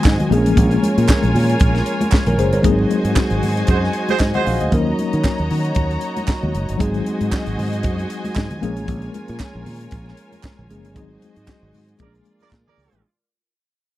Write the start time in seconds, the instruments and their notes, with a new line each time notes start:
Already playing: tine electric piano D#3 F#3 G#3 C4 F#4, string section F#4 C5 D#5 G#5
0.04 fingered electric bass G#2, kick, clap
0.06 snare, clap
0.20 closed hi-hat, high conga, low conga
0.29 fingered electric bass A#1, tine electric piano F3 G#3 A#3 C4 G#4, string section F4 A#4 C#5 G#5, closed hi-hat
0.38 tine electric piano C#4
0.45 fingered electric bass A1, closed hi-hat
0.56 fingered electric bass A#1, kick, closed hi-hat, muted conga, low conga
0.71 closed hi-hat, muted conga
0.83 closed hi-hat, high conga
0.98 fingered electric bass A#2, closed hi-hat
1.08 kick, snare, clap, muted conga
1.23 fingered electric bass A#1, closed hi-hat, muted conga
1.35 fingered electric bass A#2, open hi-hat, low conga
1.50 closed hi-hat
1.60 fingered electric bass A#1, kick, closed hi-hat
1.75 snare, closed hi-hat, muted conga
1.86 closed hi-hat
2.01 closed hi-hat, high conga
2.11 kick, clap, muted conga
2.13 snare, clap
2.26 fingered electric bass A#1, tine electric piano A#4, closed hi-hat, high conga, low conga
2.38 fingered electric bass F#1, tine electric piano G#4 C5, closed hi-hat
2.53 fingered electric bass G1, tine electric piano A#4 C#5, closed hi-hat
2.62 fingered electric bass G#1, tine electric piano F#3 G#3 A#3 D#4 G#4, string section F#4 C5 D#5 G#5, kick, closed hi-hat, muted conga, low conga
2.70 tine electric piano C4
2.79 muted conga
2.90 closed hi-hat, high conga
3.05 fingered electric bass G#2, closed hi-hat
3.16 kick, snare, clap, muted conga
3.30 fingered electric bass G#1, closed hi-hat, muted conga
3.43 fingered electric bass G#2, open hi-hat, low conga
3.57 closed hi-hat
3.67 fingered electric bass F#2, horn section F#4 G#4 C5, kick, closed hi-hat
3.84 snare
3.93 closed hi-hat
4.08 horn section F#4 G#4 C5, closed hi-hat, high conga
4.19 fingered electric bass G#2, tine electric piano C5 D#5, kick, snare, clap
4.34 horn section F#4 G#4 C5, tine electric piano D#5 F#5, closed hi-hat, muted conga, high conga, low conga
4.46 fingered electric bass A#1, tine electric piano F5, open hi-hat
4.60 fingered electric bass D2, tine electric piano C5 D#5, closed hi-hat
4.71 fingered electric bass D#2, tine electric piano F#3 A#3 C#4 D#4 A#4, string section F#4 C#5 A#5, kick, closed hi-hat, low conga
4.87 muted conga
4.99 closed hi-hat, high conga
5.13 fingered electric bass D#3, closed hi-hat
5.24 kick, snare, clap, muted conga
5.38 fingered electric bass D#2, closed hi-hat
5.51 fingered electric bass D#3, open hi-hat, low conga
5.65 closed hi-hat
5.75 fingered electric bass D#2, kick, closed hi-hat, muted conga
5.91 closed hi-hat
6.01 closed hi-hat
6.17 closed hi-hat, high conga
6.27 kick, snare, clap, muted conga
6.43 fingered electric bass D#2, muted conga, high conga, low conga
6.55 fingered electric bass F#1, closed hi-hat
6.69 fingered electric bass G1, closed hi-hat
6.78 fingered electric bass G#1, tine electric piano F#3 G#3 C4 D#4 G#4, string section F#4 C5 D#5 G#5, kick, closed hi-hat, muted conga, low conga
6.94 closed hi-hat, muted conga
7.06 closed hi-hat, high conga
7.21 fingered electric bass G#2, closed hi-hat
7.32 kick, snare, clap, muted conga
7.46 fingered electric bass G#1, closed hi-hat, muted conga
7.58 fingered electric bass G#2, open hi-hat, low conga
7.73 closed hi-hat
7.83 fingered electric bass F#2, kick, closed hi-hat, muted conga
7.98 closed hi-hat, muted conga
8.10 closed hi-hat
8.24 closed hi-hat, high conga
8.35 fingered electric bass G#2, kick, clap
8.37 snare, clap
8.51 closed hi-hat, muted conga, high conga, low conga
8.61 fingered electric bass A#1, tine electric piano F3 G#3 A#3 C#4 G#4, string section F4 A#4 C#5, closed hi-hat
8.77 fingered electric bass A1, closed hi-hat
8.87 fingered electric bass A#1, kick, closed hi-hat, muted conga, low conga
9.02 closed hi-hat
9.14 closed hi-hat, high conga
9.28 fingered electric bass A#2, closed hi-hat
9.40 kick, snare, clap, muted conga
9.54 fingered electric bass A#1, muted conga
9.66 fingered electric bass A#2, open hi-hat, low conga
9.81 closed hi-hat
9.91 fingered electric bass A#1, kick, closed hi-hat
10.06 snare, muted conga
10.17 closed hi-hat
10.32 closed hi-hat, high conga
10.43 kick, clap, muted conga
10.45 snare, clap
10.59 fingered electric bass A#1, high conga, low conga
10.69 fingered electric bass F#1, tine electric piano F3 G#3 A#3 C#4 G#4, closed hi-hat
10.85 fingered electric bass G1, closed hi-hat
10.94 fingered electric bass G#1, tine electric piano F#3 G#3 C4 D#4 G#4, string section F#4 C5 D#5, kick, closed hi-hat, muted conga, low conga
11.11 muted conga
11.22 closed hi-hat, high conga
11.36 fingered electric bass G#2, closed hi-hat
11.47 kick, snare, clap
11.63 fingered electric bass G#1
11.74 fingered electric bass G#2, open hi-hat, low conga
11.89 closed hi-hat
11.98 fingered electric bass A#1, tine electric piano F3 G#3 A#3 C#4 G#4, string section F4 A#4 D5, horn section G#4 A#4 D5, kick, closed hi-hat, muted conga
12.07 tine electric piano D4
12.15 closed hi-hat
12.25 closed hi-hat, high conga
12.40 horn section G#4 A#4 D5, closed hi-hat, high conga
12.50 fingered electric bass A#2, kick, clap, muted conga
12.53 snare, clap
12.67 horn section G#4 A#4 D5, high conga, low conga
12.78 fingered electric bass C#2, open hi-hat
12.93 fingered electric bass A1, closed hi-hat